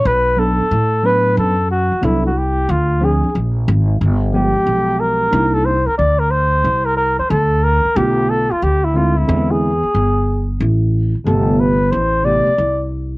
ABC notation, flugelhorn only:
X:1
M:4/4
L:1/16
Q:"Swing 16ths" 1/4=91
K:Bphr
V:1 name="Flugelhorn"
B2 A4 B2 A2 F2 E F G2 | =F2 _A2 z6 G4 _B2- | _B A c B d B c3 B B c A2 B2 | G2 A =F G E F E2 ^G6 z |
z4 A2 B2 c2 d4 z2 |]